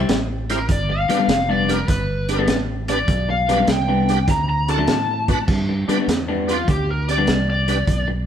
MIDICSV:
0, 0, Header, 1, 8, 480
1, 0, Start_track
1, 0, Tempo, 599401
1, 552, Time_signature, 4, 2, 24, 8
1, 6617, End_track
2, 0, Start_track
2, 0, Title_t, "Electric slide guitar"
2, 0, Program_c, 0, 29
2, 414, Note_on_c, 0, 70, 94
2, 558, Note_off_c, 0, 70, 0
2, 574, Note_on_c, 0, 74, 80
2, 718, Note_off_c, 0, 74, 0
2, 732, Note_on_c, 0, 77, 101
2, 1188, Note_off_c, 0, 77, 0
2, 1211, Note_on_c, 0, 74, 91
2, 1357, Note_off_c, 0, 74, 0
2, 1366, Note_on_c, 0, 70, 78
2, 1514, Note_off_c, 0, 70, 0
2, 1517, Note_on_c, 0, 71, 90
2, 1981, Note_off_c, 0, 71, 0
2, 2319, Note_on_c, 0, 74, 97
2, 2626, Note_off_c, 0, 74, 0
2, 2643, Note_on_c, 0, 77, 89
2, 2949, Note_off_c, 0, 77, 0
2, 2961, Note_on_c, 0, 79, 83
2, 3423, Note_off_c, 0, 79, 0
2, 3449, Note_on_c, 0, 82, 86
2, 3590, Note_off_c, 0, 82, 0
2, 3600, Note_on_c, 0, 82, 91
2, 3752, Note_off_c, 0, 82, 0
2, 3772, Note_on_c, 0, 81, 93
2, 4383, Note_off_c, 0, 81, 0
2, 5211, Note_on_c, 0, 65, 75
2, 5357, Note_off_c, 0, 65, 0
2, 5368, Note_on_c, 0, 67, 72
2, 5516, Note_off_c, 0, 67, 0
2, 5528, Note_on_c, 0, 70, 66
2, 5675, Note_off_c, 0, 70, 0
2, 5689, Note_on_c, 0, 74, 76
2, 5991, Note_off_c, 0, 74, 0
2, 6007, Note_on_c, 0, 74, 80
2, 6464, Note_off_c, 0, 74, 0
2, 6617, End_track
3, 0, Start_track
3, 0, Title_t, "Tonewheel organ"
3, 0, Program_c, 1, 16
3, 397, Note_on_c, 1, 64, 74
3, 397, Note_on_c, 1, 67, 73
3, 401, Note_on_c, 1, 72, 77
3, 474, Note_off_c, 1, 64, 0
3, 474, Note_off_c, 1, 67, 0
3, 476, Note_off_c, 1, 72, 0
3, 879, Note_on_c, 1, 62, 67
3, 882, Note_on_c, 1, 67, 64
3, 882, Note_on_c, 1, 71, 81
3, 955, Note_off_c, 1, 62, 0
3, 957, Note_off_c, 1, 67, 0
3, 957, Note_off_c, 1, 71, 0
3, 1349, Note_on_c, 1, 62, 73
3, 1353, Note_on_c, 1, 67, 65
3, 1357, Note_on_c, 1, 71, 87
3, 1431, Note_off_c, 1, 62, 0
3, 1432, Note_off_c, 1, 67, 0
3, 1435, Note_off_c, 1, 71, 0
3, 1831, Note_on_c, 1, 62, 78
3, 1834, Note_on_c, 1, 67, 68
3, 1838, Note_on_c, 1, 71, 84
3, 1912, Note_off_c, 1, 62, 0
3, 1913, Note_off_c, 1, 67, 0
3, 1915, Note_off_c, 1, 71, 0
3, 2310, Note_on_c, 1, 62, 72
3, 2316, Note_on_c, 1, 67, 66
3, 2316, Note_on_c, 1, 71, 87
3, 2391, Note_off_c, 1, 62, 0
3, 2394, Note_off_c, 1, 67, 0
3, 2395, Note_off_c, 1, 71, 0
3, 2793, Note_on_c, 1, 62, 70
3, 2796, Note_on_c, 1, 67, 66
3, 2800, Note_on_c, 1, 71, 82
3, 2873, Note_off_c, 1, 62, 0
3, 2874, Note_off_c, 1, 67, 0
3, 2876, Note_off_c, 1, 71, 0
3, 3276, Note_on_c, 1, 62, 75
3, 3280, Note_on_c, 1, 67, 72
3, 3283, Note_on_c, 1, 71, 76
3, 3354, Note_off_c, 1, 62, 0
3, 3356, Note_off_c, 1, 67, 0
3, 3358, Note_off_c, 1, 71, 0
3, 3750, Note_on_c, 1, 62, 78
3, 3752, Note_on_c, 1, 66, 73
3, 3756, Note_on_c, 1, 69, 90
3, 3831, Note_off_c, 1, 62, 0
3, 3832, Note_off_c, 1, 66, 0
3, 3835, Note_off_c, 1, 69, 0
3, 4233, Note_on_c, 1, 62, 74
3, 4234, Note_on_c, 1, 66, 67
3, 4237, Note_on_c, 1, 71, 84
3, 4313, Note_off_c, 1, 62, 0
3, 4313, Note_off_c, 1, 66, 0
3, 4315, Note_off_c, 1, 71, 0
3, 4706, Note_on_c, 1, 62, 78
3, 4712, Note_on_c, 1, 67, 66
3, 4713, Note_on_c, 1, 71, 86
3, 4790, Note_off_c, 1, 62, 0
3, 4792, Note_off_c, 1, 67, 0
3, 4793, Note_off_c, 1, 71, 0
3, 5184, Note_on_c, 1, 62, 70
3, 5189, Note_on_c, 1, 67, 66
3, 5190, Note_on_c, 1, 71, 71
3, 5268, Note_off_c, 1, 62, 0
3, 5271, Note_off_c, 1, 67, 0
3, 5271, Note_off_c, 1, 71, 0
3, 5670, Note_on_c, 1, 62, 71
3, 5673, Note_on_c, 1, 67, 66
3, 5674, Note_on_c, 1, 74, 78
3, 5751, Note_off_c, 1, 62, 0
3, 5752, Note_off_c, 1, 67, 0
3, 5753, Note_off_c, 1, 74, 0
3, 6148, Note_on_c, 1, 62, 69
3, 6153, Note_on_c, 1, 67, 58
3, 6154, Note_on_c, 1, 71, 77
3, 6230, Note_off_c, 1, 62, 0
3, 6232, Note_off_c, 1, 67, 0
3, 6232, Note_off_c, 1, 71, 0
3, 6617, End_track
4, 0, Start_track
4, 0, Title_t, "Clean electric guitar"
4, 0, Program_c, 2, 27
4, 0, Note_on_c, 2, 60, 77
4, 0, Note_on_c, 2, 64, 80
4, 2, Note_on_c, 2, 55, 70
4, 3, Note_on_c, 2, 48, 64
4, 121, Note_off_c, 2, 64, 0
4, 122, Note_off_c, 2, 60, 0
4, 125, Note_off_c, 2, 48, 0
4, 125, Note_off_c, 2, 55, 0
4, 872, Note_on_c, 2, 43, 87
4, 878, Note_on_c, 2, 55, 94
4, 879, Note_on_c, 2, 59, 96
4, 883, Note_on_c, 2, 62, 91
4, 941, Note_off_c, 2, 62, 0
4, 943, Note_off_c, 2, 59, 0
4, 948, Note_off_c, 2, 43, 0
4, 949, Note_off_c, 2, 55, 0
4, 950, Note_on_c, 2, 62, 89
4, 953, Note_on_c, 2, 59, 96
4, 958, Note_on_c, 2, 43, 81
4, 958, Note_on_c, 2, 55, 92
4, 1018, Note_off_c, 2, 43, 0
4, 1021, Note_off_c, 2, 55, 0
4, 1024, Note_off_c, 2, 62, 0
4, 1025, Note_off_c, 2, 59, 0
4, 1193, Note_on_c, 2, 62, 82
4, 1197, Note_on_c, 2, 59, 83
4, 1200, Note_on_c, 2, 55, 83
4, 1203, Note_on_c, 2, 43, 67
4, 1379, Note_off_c, 2, 62, 0
4, 1381, Note_off_c, 2, 59, 0
4, 1382, Note_off_c, 2, 55, 0
4, 1384, Note_off_c, 2, 43, 0
4, 1913, Note_on_c, 2, 62, 84
4, 1916, Note_on_c, 2, 59, 86
4, 1918, Note_on_c, 2, 55, 73
4, 1921, Note_on_c, 2, 43, 67
4, 2041, Note_off_c, 2, 62, 0
4, 2042, Note_off_c, 2, 59, 0
4, 2043, Note_off_c, 2, 55, 0
4, 2044, Note_off_c, 2, 43, 0
4, 2792, Note_on_c, 2, 43, 82
4, 2793, Note_on_c, 2, 55, 92
4, 2795, Note_on_c, 2, 59, 93
4, 2800, Note_on_c, 2, 62, 96
4, 2860, Note_off_c, 2, 62, 0
4, 2865, Note_off_c, 2, 59, 0
4, 2868, Note_off_c, 2, 55, 0
4, 2870, Note_on_c, 2, 62, 98
4, 2872, Note_off_c, 2, 43, 0
4, 2875, Note_on_c, 2, 59, 95
4, 2878, Note_on_c, 2, 55, 85
4, 2881, Note_on_c, 2, 43, 81
4, 2940, Note_off_c, 2, 43, 0
4, 2943, Note_off_c, 2, 55, 0
4, 2944, Note_off_c, 2, 59, 0
4, 2945, Note_off_c, 2, 62, 0
4, 3110, Note_on_c, 2, 62, 87
4, 3114, Note_on_c, 2, 59, 82
4, 3116, Note_on_c, 2, 55, 75
4, 3120, Note_on_c, 2, 43, 73
4, 3298, Note_off_c, 2, 62, 0
4, 3300, Note_off_c, 2, 59, 0
4, 3301, Note_off_c, 2, 55, 0
4, 3303, Note_off_c, 2, 43, 0
4, 3830, Note_on_c, 2, 62, 78
4, 3834, Note_on_c, 2, 57, 76
4, 3838, Note_on_c, 2, 54, 72
4, 3841, Note_on_c, 2, 50, 61
4, 3959, Note_off_c, 2, 62, 0
4, 3961, Note_off_c, 2, 57, 0
4, 3963, Note_off_c, 2, 54, 0
4, 3964, Note_off_c, 2, 50, 0
4, 4714, Note_on_c, 2, 43, 88
4, 4718, Note_on_c, 2, 55, 81
4, 4721, Note_on_c, 2, 59, 82
4, 4724, Note_on_c, 2, 62, 97
4, 4780, Note_off_c, 2, 62, 0
4, 4785, Note_off_c, 2, 59, 0
4, 4789, Note_off_c, 2, 55, 0
4, 4790, Note_on_c, 2, 62, 80
4, 4791, Note_off_c, 2, 43, 0
4, 4795, Note_on_c, 2, 59, 88
4, 4798, Note_on_c, 2, 55, 72
4, 4800, Note_on_c, 2, 43, 69
4, 4862, Note_off_c, 2, 43, 0
4, 4864, Note_off_c, 2, 55, 0
4, 4864, Note_off_c, 2, 59, 0
4, 4867, Note_off_c, 2, 62, 0
4, 5032, Note_on_c, 2, 62, 79
4, 5034, Note_on_c, 2, 59, 82
4, 5037, Note_on_c, 2, 55, 70
4, 5039, Note_on_c, 2, 43, 70
4, 5218, Note_off_c, 2, 62, 0
4, 5220, Note_off_c, 2, 59, 0
4, 5221, Note_off_c, 2, 55, 0
4, 5222, Note_off_c, 2, 43, 0
4, 5749, Note_on_c, 2, 62, 75
4, 5753, Note_on_c, 2, 59, 66
4, 5757, Note_on_c, 2, 43, 60
4, 5757, Note_on_c, 2, 55, 69
4, 5878, Note_off_c, 2, 62, 0
4, 5880, Note_off_c, 2, 59, 0
4, 5882, Note_off_c, 2, 43, 0
4, 5882, Note_off_c, 2, 55, 0
4, 6617, End_track
5, 0, Start_track
5, 0, Title_t, "Fingered electric bass"
5, 0, Program_c, 3, 33
5, 70, Note_on_c, 3, 33, 88
5, 537, Note_off_c, 3, 33, 0
5, 551, Note_on_c, 3, 31, 83
5, 853, Note_off_c, 3, 31, 0
5, 1026, Note_on_c, 3, 29, 98
5, 1495, Note_off_c, 3, 29, 0
5, 1509, Note_on_c, 3, 31, 79
5, 1976, Note_off_c, 3, 31, 0
5, 1988, Note_on_c, 3, 33, 91
5, 2456, Note_off_c, 3, 33, 0
5, 2465, Note_on_c, 3, 35, 91
5, 2935, Note_off_c, 3, 35, 0
5, 2946, Note_on_c, 3, 36, 96
5, 3415, Note_off_c, 3, 36, 0
5, 3426, Note_on_c, 3, 38, 90
5, 3895, Note_off_c, 3, 38, 0
5, 3906, Note_on_c, 3, 45, 89
5, 4375, Note_off_c, 3, 45, 0
5, 4387, Note_on_c, 3, 43, 83
5, 4691, Note_off_c, 3, 43, 0
5, 4867, Note_on_c, 3, 40, 88
5, 5335, Note_off_c, 3, 40, 0
5, 5350, Note_on_c, 3, 38, 77
5, 5816, Note_off_c, 3, 38, 0
5, 5832, Note_on_c, 3, 36, 86
5, 6297, Note_off_c, 3, 36, 0
5, 6303, Note_on_c, 3, 35, 84
5, 6617, Note_off_c, 3, 35, 0
5, 6617, End_track
6, 0, Start_track
6, 0, Title_t, "Muted clean electric guitar strokes"
6, 399, Note_on_c, 9, 29, 45
6, 479, Note_off_c, 9, 29, 0
6, 716, Note_on_c, 9, 29, 47
6, 796, Note_off_c, 9, 29, 0
6, 1028, Note_on_c, 9, 29, 45
6, 1108, Note_off_c, 9, 29, 0
6, 1510, Note_on_c, 9, 29, 45
6, 1590, Note_off_c, 9, 29, 0
6, 2315, Note_on_c, 9, 29, 45
6, 2395, Note_off_c, 9, 29, 0
6, 2633, Note_on_c, 9, 29, 49
6, 2713, Note_off_c, 9, 29, 0
6, 2949, Note_on_c, 9, 29, 49
6, 3030, Note_off_c, 9, 29, 0
6, 3429, Note_on_c, 9, 29, 44
6, 3509, Note_off_c, 9, 29, 0
6, 4238, Note_on_c, 9, 29, 46
6, 4318, Note_off_c, 9, 29, 0
6, 4556, Note_on_c, 9, 29, 45
6, 4637, Note_off_c, 9, 29, 0
6, 4871, Note_on_c, 9, 29, 39
6, 4952, Note_off_c, 9, 29, 0
6, 5347, Note_on_c, 9, 29, 44
6, 5428, Note_off_c, 9, 29, 0
6, 6152, Note_on_c, 9, 29, 44
6, 6232, Note_off_c, 9, 29, 0
6, 6469, Note_on_c, 9, 29, 45
6, 6549, Note_off_c, 9, 29, 0
6, 6617, End_track
7, 0, Start_track
7, 0, Title_t, "Muted fingered electric bass strokes"
7, 4713, Note_on_c, 9, 29, 39
7, 4793, Note_off_c, 9, 29, 0
7, 6617, End_track
8, 0, Start_track
8, 0, Title_t, "Drums"
8, 71, Note_on_c, 9, 42, 83
8, 75, Note_on_c, 9, 38, 121
8, 152, Note_off_c, 9, 42, 0
8, 156, Note_off_c, 9, 38, 0
8, 398, Note_on_c, 9, 42, 62
8, 402, Note_on_c, 9, 38, 37
8, 478, Note_off_c, 9, 42, 0
8, 482, Note_off_c, 9, 38, 0
8, 551, Note_on_c, 9, 42, 80
8, 552, Note_on_c, 9, 36, 102
8, 631, Note_off_c, 9, 42, 0
8, 632, Note_off_c, 9, 36, 0
8, 878, Note_on_c, 9, 42, 62
8, 882, Note_on_c, 9, 38, 34
8, 958, Note_off_c, 9, 42, 0
8, 962, Note_off_c, 9, 38, 0
8, 1032, Note_on_c, 9, 42, 83
8, 1036, Note_on_c, 9, 38, 121
8, 1113, Note_off_c, 9, 42, 0
8, 1117, Note_off_c, 9, 38, 0
8, 1356, Note_on_c, 9, 42, 58
8, 1360, Note_on_c, 9, 38, 33
8, 1436, Note_off_c, 9, 42, 0
8, 1440, Note_off_c, 9, 38, 0
8, 1508, Note_on_c, 9, 42, 92
8, 1509, Note_on_c, 9, 36, 106
8, 1512, Note_on_c, 9, 38, 33
8, 1589, Note_off_c, 9, 36, 0
8, 1589, Note_off_c, 9, 42, 0
8, 1593, Note_off_c, 9, 38, 0
8, 1831, Note_on_c, 9, 42, 71
8, 1835, Note_on_c, 9, 38, 36
8, 1911, Note_off_c, 9, 42, 0
8, 1915, Note_off_c, 9, 38, 0
8, 1983, Note_on_c, 9, 42, 87
8, 1987, Note_on_c, 9, 38, 123
8, 2063, Note_off_c, 9, 42, 0
8, 2067, Note_off_c, 9, 38, 0
8, 2309, Note_on_c, 9, 42, 72
8, 2313, Note_on_c, 9, 38, 37
8, 2389, Note_off_c, 9, 42, 0
8, 2393, Note_off_c, 9, 38, 0
8, 2467, Note_on_c, 9, 36, 103
8, 2467, Note_on_c, 9, 42, 83
8, 2547, Note_off_c, 9, 36, 0
8, 2547, Note_off_c, 9, 42, 0
8, 2795, Note_on_c, 9, 42, 60
8, 2799, Note_on_c, 9, 38, 32
8, 2875, Note_off_c, 9, 42, 0
8, 2879, Note_off_c, 9, 38, 0
8, 2943, Note_on_c, 9, 42, 86
8, 2947, Note_on_c, 9, 38, 112
8, 3023, Note_off_c, 9, 42, 0
8, 3027, Note_off_c, 9, 38, 0
8, 3273, Note_on_c, 9, 42, 61
8, 3277, Note_on_c, 9, 38, 36
8, 3353, Note_off_c, 9, 42, 0
8, 3357, Note_off_c, 9, 38, 0
8, 3425, Note_on_c, 9, 42, 81
8, 3426, Note_on_c, 9, 36, 109
8, 3429, Note_on_c, 9, 38, 33
8, 3505, Note_off_c, 9, 42, 0
8, 3506, Note_off_c, 9, 36, 0
8, 3509, Note_off_c, 9, 38, 0
8, 3752, Note_on_c, 9, 42, 67
8, 3756, Note_on_c, 9, 38, 36
8, 3832, Note_off_c, 9, 42, 0
8, 3836, Note_off_c, 9, 38, 0
8, 3904, Note_on_c, 9, 42, 84
8, 3908, Note_on_c, 9, 38, 115
8, 3984, Note_off_c, 9, 42, 0
8, 3988, Note_off_c, 9, 38, 0
8, 4231, Note_on_c, 9, 36, 84
8, 4232, Note_on_c, 9, 42, 62
8, 4236, Note_on_c, 9, 38, 37
8, 4311, Note_off_c, 9, 36, 0
8, 4312, Note_off_c, 9, 42, 0
8, 4316, Note_off_c, 9, 38, 0
8, 4386, Note_on_c, 9, 49, 89
8, 4388, Note_on_c, 9, 36, 100
8, 4390, Note_on_c, 9, 38, 30
8, 4466, Note_off_c, 9, 49, 0
8, 4468, Note_off_c, 9, 36, 0
8, 4470, Note_off_c, 9, 38, 0
8, 4718, Note_on_c, 9, 42, 57
8, 4722, Note_on_c, 9, 38, 30
8, 4798, Note_off_c, 9, 42, 0
8, 4802, Note_off_c, 9, 38, 0
8, 4874, Note_on_c, 9, 42, 89
8, 4878, Note_on_c, 9, 38, 102
8, 4954, Note_off_c, 9, 42, 0
8, 4958, Note_off_c, 9, 38, 0
8, 5196, Note_on_c, 9, 42, 55
8, 5200, Note_on_c, 9, 38, 31
8, 5276, Note_off_c, 9, 42, 0
8, 5280, Note_off_c, 9, 38, 0
8, 5348, Note_on_c, 9, 36, 100
8, 5350, Note_on_c, 9, 42, 78
8, 5428, Note_off_c, 9, 36, 0
8, 5430, Note_off_c, 9, 42, 0
8, 5676, Note_on_c, 9, 42, 58
8, 5680, Note_on_c, 9, 38, 33
8, 5756, Note_off_c, 9, 42, 0
8, 5760, Note_off_c, 9, 38, 0
8, 5824, Note_on_c, 9, 42, 78
8, 5828, Note_on_c, 9, 38, 106
8, 5904, Note_off_c, 9, 42, 0
8, 5908, Note_off_c, 9, 38, 0
8, 6150, Note_on_c, 9, 42, 64
8, 6154, Note_on_c, 9, 38, 36
8, 6230, Note_off_c, 9, 42, 0
8, 6234, Note_off_c, 9, 38, 0
8, 6305, Note_on_c, 9, 42, 74
8, 6306, Note_on_c, 9, 36, 91
8, 6386, Note_off_c, 9, 36, 0
8, 6386, Note_off_c, 9, 42, 0
8, 6617, End_track
0, 0, End_of_file